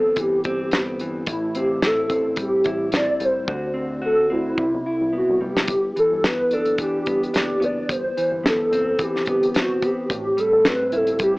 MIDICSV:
0, 0, Header, 1, 5, 480
1, 0, Start_track
1, 0, Tempo, 551471
1, 1111, Time_signature, 4, 2, 24, 8
1, 9909, End_track
2, 0, Start_track
2, 0, Title_t, "Soft synth lead"
2, 0, Program_c, 0, 80
2, 0, Note_on_c, 0, 69, 96
2, 168, Note_on_c, 0, 67, 94
2, 181, Note_off_c, 0, 69, 0
2, 880, Note_off_c, 0, 67, 0
2, 1140, Note_on_c, 0, 64, 88
2, 1350, Note_off_c, 0, 64, 0
2, 1366, Note_on_c, 0, 67, 92
2, 1616, Note_on_c, 0, 69, 94
2, 1629, Note_off_c, 0, 67, 0
2, 1844, Note_off_c, 0, 69, 0
2, 1856, Note_on_c, 0, 69, 85
2, 1958, Note_off_c, 0, 69, 0
2, 2099, Note_on_c, 0, 67, 105
2, 2532, Note_off_c, 0, 67, 0
2, 2577, Note_on_c, 0, 74, 116
2, 2819, Note_on_c, 0, 72, 101
2, 2832, Note_off_c, 0, 74, 0
2, 3285, Note_off_c, 0, 72, 0
2, 3525, Note_on_c, 0, 69, 106
2, 3742, Note_off_c, 0, 69, 0
2, 3763, Note_on_c, 0, 64, 102
2, 4442, Note_off_c, 0, 64, 0
2, 4500, Note_on_c, 0, 66, 86
2, 4710, Note_off_c, 0, 66, 0
2, 4738, Note_on_c, 0, 67, 92
2, 5172, Note_off_c, 0, 67, 0
2, 5211, Note_on_c, 0, 69, 93
2, 5425, Note_off_c, 0, 69, 0
2, 5681, Note_on_c, 0, 69, 94
2, 5916, Note_off_c, 0, 69, 0
2, 5928, Note_on_c, 0, 67, 89
2, 6143, Note_off_c, 0, 67, 0
2, 6167, Note_on_c, 0, 67, 89
2, 6644, Note_on_c, 0, 74, 90
2, 6657, Note_off_c, 0, 67, 0
2, 6879, Note_on_c, 0, 72, 102
2, 6892, Note_off_c, 0, 74, 0
2, 7354, Note_off_c, 0, 72, 0
2, 7382, Note_on_c, 0, 69, 98
2, 7850, Note_on_c, 0, 67, 102
2, 7863, Note_off_c, 0, 69, 0
2, 8328, Note_on_c, 0, 66, 89
2, 8341, Note_off_c, 0, 67, 0
2, 8567, Note_on_c, 0, 67, 102
2, 8580, Note_off_c, 0, 66, 0
2, 9042, Note_on_c, 0, 69, 104
2, 9055, Note_off_c, 0, 67, 0
2, 9288, Note_on_c, 0, 71, 98
2, 9301, Note_off_c, 0, 69, 0
2, 9539, Note_on_c, 0, 69, 88
2, 9552, Note_off_c, 0, 71, 0
2, 9764, Note_off_c, 0, 69, 0
2, 9770, Note_on_c, 0, 67, 108
2, 9909, Note_off_c, 0, 67, 0
2, 9909, End_track
3, 0, Start_track
3, 0, Title_t, "Clean electric guitar"
3, 0, Program_c, 1, 27
3, 0, Note_on_c, 1, 43, 71
3, 0, Note_on_c, 1, 52, 61
3, 0, Note_on_c, 1, 59, 58
3, 0, Note_on_c, 1, 60, 65
3, 145, Note_off_c, 1, 52, 0
3, 148, Note_on_c, 1, 52, 59
3, 391, Note_off_c, 1, 60, 0
3, 394, Note_on_c, 1, 60, 61
3, 634, Note_off_c, 1, 59, 0
3, 644, Note_on_c, 1, 59, 53
3, 874, Note_off_c, 1, 52, 0
3, 877, Note_on_c, 1, 52, 57
3, 1106, Note_off_c, 1, 43, 0
3, 1109, Note_on_c, 1, 45, 68
3, 1111, Note_off_c, 1, 60, 0
3, 1114, Note_on_c, 1, 64, 54
3, 1171, Note_off_c, 1, 59, 0
3, 1351, Note_on_c, 1, 60, 65
3, 1574, Note_off_c, 1, 64, 0
3, 1585, Note_on_c, 1, 64, 66
3, 1818, Note_off_c, 1, 60, 0
3, 1822, Note_on_c, 1, 60, 59
3, 2055, Note_off_c, 1, 52, 0
3, 2058, Note_on_c, 1, 55, 58
3, 2292, Note_off_c, 1, 64, 0
3, 2302, Note_on_c, 1, 64, 65
3, 2544, Note_off_c, 1, 60, 0
3, 2547, Note_on_c, 1, 60, 47
3, 2773, Note_off_c, 1, 55, 0
3, 2784, Note_on_c, 1, 55, 54
3, 3027, Note_off_c, 1, 64, 0
3, 3028, Note_on_c, 1, 50, 61
3, 3031, Note_off_c, 1, 45, 0
3, 3033, Note_on_c, 1, 66, 65
3, 3080, Note_off_c, 1, 55, 0
3, 3250, Note_off_c, 1, 60, 0
3, 3253, Note_on_c, 1, 60, 60
3, 3486, Note_off_c, 1, 66, 0
3, 3496, Note_on_c, 1, 66, 69
3, 3732, Note_off_c, 1, 60, 0
3, 3742, Note_on_c, 1, 60, 58
3, 3977, Note_off_c, 1, 50, 0
3, 3981, Note_on_c, 1, 48, 68
3, 4036, Note_off_c, 1, 66, 0
3, 4040, Note_off_c, 1, 60, 0
3, 4231, Note_on_c, 1, 64, 57
3, 4462, Note_on_c, 1, 59, 51
3, 4707, Note_on_c, 1, 55, 54
3, 4999, Note_off_c, 1, 48, 0
3, 5186, Note_off_c, 1, 55, 0
3, 5189, Note_on_c, 1, 52, 59
3, 5434, Note_off_c, 1, 59, 0
3, 5438, Note_on_c, 1, 59, 64
3, 5682, Note_off_c, 1, 64, 0
3, 5685, Note_on_c, 1, 62, 68
3, 5913, Note_off_c, 1, 52, 0
3, 5917, Note_on_c, 1, 52, 56
3, 6155, Note_off_c, 1, 59, 0
3, 6158, Note_on_c, 1, 59, 57
3, 6376, Note_off_c, 1, 62, 0
3, 6386, Note_on_c, 1, 62, 58
3, 6613, Note_off_c, 1, 59, 0
3, 6617, Note_on_c, 1, 59, 56
3, 6921, Note_off_c, 1, 62, 0
3, 7110, Note_off_c, 1, 52, 0
3, 7114, Note_on_c, 1, 52, 70
3, 7339, Note_off_c, 1, 59, 0
3, 7342, Note_on_c, 1, 59, 59
3, 7594, Note_on_c, 1, 60, 64
3, 7818, Note_off_c, 1, 52, 0
3, 7822, Note_on_c, 1, 52, 58
3, 8066, Note_off_c, 1, 59, 0
3, 8076, Note_on_c, 1, 59, 59
3, 8312, Note_off_c, 1, 60, 0
3, 8315, Note_on_c, 1, 60, 57
3, 8539, Note_off_c, 1, 59, 0
3, 8550, Note_on_c, 1, 59, 59
3, 8793, Note_on_c, 1, 45, 80
3, 8842, Note_off_c, 1, 59, 0
3, 9022, Note_off_c, 1, 52, 0
3, 9026, Note_on_c, 1, 55, 68
3, 9270, Note_off_c, 1, 60, 0
3, 9270, Note_on_c, 1, 60, 65
3, 9512, Note_on_c, 1, 64, 63
3, 9735, Note_off_c, 1, 55, 0
3, 9746, Note_on_c, 1, 55, 64
3, 9909, Note_off_c, 1, 45, 0
3, 9909, Note_off_c, 1, 55, 0
3, 9909, Note_off_c, 1, 60, 0
3, 9909, Note_off_c, 1, 64, 0
3, 9909, End_track
4, 0, Start_track
4, 0, Title_t, "Analog synth bass"
4, 0, Program_c, 2, 38
4, 0, Note_on_c, 2, 31, 97
4, 210, Note_off_c, 2, 31, 0
4, 392, Note_on_c, 2, 31, 91
4, 1077, Note_off_c, 2, 31, 0
4, 1106, Note_on_c, 2, 33, 112
4, 1690, Note_off_c, 2, 33, 0
4, 1824, Note_on_c, 2, 33, 92
4, 2125, Note_off_c, 2, 33, 0
4, 2310, Note_on_c, 2, 33, 95
4, 2694, Note_off_c, 2, 33, 0
4, 2788, Note_on_c, 2, 36, 93
4, 2982, Note_off_c, 2, 36, 0
4, 3033, Note_on_c, 2, 38, 114
4, 3614, Note_off_c, 2, 38, 0
4, 3756, Note_on_c, 2, 38, 90
4, 3946, Note_off_c, 2, 38, 0
4, 3987, Note_on_c, 2, 36, 90
4, 4094, Note_off_c, 2, 36, 0
4, 4127, Note_on_c, 2, 35, 83
4, 4212, Note_off_c, 2, 35, 0
4, 4359, Note_on_c, 2, 36, 77
4, 4552, Note_off_c, 2, 36, 0
4, 4607, Note_on_c, 2, 36, 81
4, 4692, Note_off_c, 2, 36, 0
4, 4716, Note_on_c, 2, 30, 84
4, 4906, Note_off_c, 2, 30, 0
4, 4947, Note_on_c, 2, 31, 113
4, 5140, Note_off_c, 2, 31, 0
4, 5321, Note_on_c, 2, 31, 87
4, 5600, Note_off_c, 2, 31, 0
4, 5666, Note_on_c, 2, 30, 100
4, 5966, Note_off_c, 2, 30, 0
4, 6154, Note_on_c, 2, 31, 81
4, 6344, Note_off_c, 2, 31, 0
4, 6385, Note_on_c, 2, 30, 88
4, 6579, Note_off_c, 2, 30, 0
4, 6623, Note_on_c, 2, 30, 92
4, 6818, Note_off_c, 2, 30, 0
4, 6871, Note_on_c, 2, 31, 112
4, 7062, Note_off_c, 2, 31, 0
4, 7234, Note_on_c, 2, 31, 75
4, 7515, Note_off_c, 2, 31, 0
4, 7581, Note_on_c, 2, 30, 87
4, 7882, Note_off_c, 2, 30, 0
4, 8070, Note_on_c, 2, 31, 101
4, 8454, Note_off_c, 2, 31, 0
4, 8790, Note_on_c, 2, 33, 104
4, 8982, Note_off_c, 2, 33, 0
4, 9162, Note_on_c, 2, 33, 93
4, 9439, Note_off_c, 2, 33, 0
4, 9507, Note_on_c, 2, 31, 87
4, 9805, Note_off_c, 2, 31, 0
4, 9909, End_track
5, 0, Start_track
5, 0, Title_t, "Drums"
5, 140, Note_on_c, 9, 42, 84
5, 146, Note_on_c, 9, 36, 89
5, 227, Note_off_c, 9, 42, 0
5, 233, Note_off_c, 9, 36, 0
5, 382, Note_on_c, 9, 42, 51
5, 393, Note_on_c, 9, 36, 84
5, 469, Note_off_c, 9, 42, 0
5, 480, Note_off_c, 9, 36, 0
5, 622, Note_on_c, 9, 42, 79
5, 638, Note_on_c, 9, 38, 100
5, 709, Note_off_c, 9, 42, 0
5, 725, Note_off_c, 9, 38, 0
5, 866, Note_on_c, 9, 42, 60
5, 953, Note_off_c, 9, 42, 0
5, 1101, Note_on_c, 9, 42, 97
5, 1107, Note_on_c, 9, 36, 123
5, 1188, Note_off_c, 9, 42, 0
5, 1194, Note_off_c, 9, 36, 0
5, 1347, Note_on_c, 9, 42, 61
5, 1434, Note_off_c, 9, 42, 0
5, 1588, Note_on_c, 9, 38, 100
5, 1589, Note_on_c, 9, 42, 74
5, 1675, Note_off_c, 9, 38, 0
5, 1676, Note_off_c, 9, 42, 0
5, 1826, Note_on_c, 9, 42, 60
5, 1827, Note_on_c, 9, 36, 68
5, 1913, Note_off_c, 9, 42, 0
5, 1914, Note_off_c, 9, 36, 0
5, 2057, Note_on_c, 9, 42, 83
5, 2065, Note_on_c, 9, 36, 95
5, 2144, Note_off_c, 9, 42, 0
5, 2152, Note_off_c, 9, 36, 0
5, 2301, Note_on_c, 9, 42, 55
5, 2313, Note_on_c, 9, 36, 84
5, 2388, Note_off_c, 9, 42, 0
5, 2400, Note_off_c, 9, 36, 0
5, 2542, Note_on_c, 9, 42, 80
5, 2557, Note_on_c, 9, 38, 95
5, 2629, Note_off_c, 9, 42, 0
5, 2644, Note_off_c, 9, 38, 0
5, 2786, Note_on_c, 9, 42, 60
5, 2874, Note_off_c, 9, 42, 0
5, 3028, Note_on_c, 9, 36, 121
5, 3116, Note_off_c, 9, 36, 0
5, 3985, Note_on_c, 9, 36, 89
5, 4072, Note_off_c, 9, 36, 0
5, 4845, Note_on_c, 9, 38, 88
5, 4932, Note_off_c, 9, 38, 0
5, 4940, Note_on_c, 9, 42, 99
5, 4946, Note_on_c, 9, 36, 118
5, 5027, Note_off_c, 9, 42, 0
5, 5033, Note_off_c, 9, 36, 0
5, 5193, Note_on_c, 9, 42, 52
5, 5280, Note_off_c, 9, 42, 0
5, 5432, Note_on_c, 9, 38, 111
5, 5434, Note_on_c, 9, 42, 72
5, 5519, Note_off_c, 9, 38, 0
5, 5521, Note_off_c, 9, 42, 0
5, 5666, Note_on_c, 9, 42, 56
5, 5753, Note_off_c, 9, 42, 0
5, 5793, Note_on_c, 9, 42, 51
5, 5880, Note_off_c, 9, 42, 0
5, 5903, Note_on_c, 9, 42, 84
5, 5906, Note_on_c, 9, 36, 85
5, 5990, Note_off_c, 9, 42, 0
5, 5993, Note_off_c, 9, 36, 0
5, 6145, Note_on_c, 9, 42, 53
5, 6154, Note_on_c, 9, 36, 79
5, 6232, Note_off_c, 9, 42, 0
5, 6241, Note_off_c, 9, 36, 0
5, 6296, Note_on_c, 9, 42, 44
5, 6384, Note_off_c, 9, 42, 0
5, 6389, Note_on_c, 9, 42, 84
5, 6404, Note_on_c, 9, 38, 95
5, 6476, Note_off_c, 9, 42, 0
5, 6491, Note_off_c, 9, 38, 0
5, 6635, Note_on_c, 9, 42, 58
5, 6722, Note_off_c, 9, 42, 0
5, 6870, Note_on_c, 9, 36, 118
5, 6873, Note_on_c, 9, 42, 98
5, 6957, Note_off_c, 9, 36, 0
5, 6960, Note_off_c, 9, 42, 0
5, 7117, Note_on_c, 9, 42, 61
5, 7204, Note_off_c, 9, 42, 0
5, 7361, Note_on_c, 9, 38, 114
5, 7363, Note_on_c, 9, 42, 68
5, 7448, Note_off_c, 9, 38, 0
5, 7450, Note_off_c, 9, 42, 0
5, 7596, Note_on_c, 9, 42, 60
5, 7683, Note_off_c, 9, 42, 0
5, 7823, Note_on_c, 9, 42, 86
5, 7827, Note_on_c, 9, 36, 86
5, 7910, Note_off_c, 9, 42, 0
5, 7914, Note_off_c, 9, 36, 0
5, 7974, Note_on_c, 9, 38, 36
5, 8059, Note_on_c, 9, 42, 65
5, 8061, Note_off_c, 9, 38, 0
5, 8073, Note_on_c, 9, 36, 84
5, 8146, Note_off_c, 9, 42, 0
5, 8160, Note_off_c, 9, 36, 0
5, 8209, Note_on_c, 9, 42, 49
5, 8296, Note_off_c, 9, 42, 0
5, 8308, Note_on_c, 9, 42, 76
5, 8323, Note_on_c, 9, 38, 100
5, 8395, Note_off_c, 9, 42, 0
5, 8410, Note_off_c, 9, 38, 0
5, 8551, Note_on_c, 9, 36, 86
5, 8551, Note_on_c, 9, 42, 58
5, 8638, Note_off_c, 9, 36, 0
5, 8638, Note_off_c, 9, 42, 0
5, 8790, Note_on_c, 9, 36, 120
5, 8791, Note_on_c, 9, 42, 92
5, 8877, Note_off_c, 9, 36, 0
5, 8878, Note_off_c, 9, 42, 0
5, 9034, Note_on_c, 9, 42, 62
5, 9121, Note_off_c, 9, 42, 0
5, 9269, Note_on_c, 9, 38, 109
5, 9271, Note_on_c, 9, 42, 75
5, 9356, Note_off_c, 9, 38, 0
5, 9358, Note_off_c, 9, 42, 0
5, 9505, Note_on_c, 9, 42, 62
5, 9592, Note_off_c, 9, 42, 0
5, 9633, Note_on_c, 9, 42, 55
5, 9720, Note_off_c, 9, 42, 0
5, 9738, Note_on_c, 9, 42, 87
5, 9745, Note_on_c, 9, 36, 102
5, 9825, Note_off_c, 9, 42, 0
5, 9832, Note_off_c, 9, 36, 0
5, 9909, End_track
0, 0, End_of_file